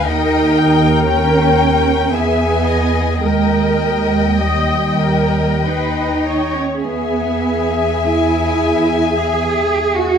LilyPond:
<<
  \new Staff \with { instrumentName = "Violin section" } { \time 3/4 \key dis \phrygian \tempo 4 = 54 g''4 g''4 gis''4 | g''2. | gis''2. | }
  \new Staff \with { instrumentName = "Violin section" } { \time 3/4 \key dis \phrygian dis''8 g''8 g''4 e''8 dis''8 | dis''2. | e''2. | }
  \new Staff \with { instrumentName = "Viola section" } { \time 3/4 \key dis \phrygian ais'2 gis'4 | ais'4 dis''8 ais'8 b'8 cis''8 | gis'2. | }
  \new Staff \with { instrumentName = "Cello section" } { \time 3/4 \key dis \phrygian dis'4 cis'4 b4 | gis4 g4 dis'8. cis'16 | b4 e'4 gis'8. fis'16 | }
  \new Staff \with { instrumentName = "Double bass section" } { \clef bass \time 3/4 \key dis \phrygian dis,2 e,4 | dis,2. | e,2. | }
>>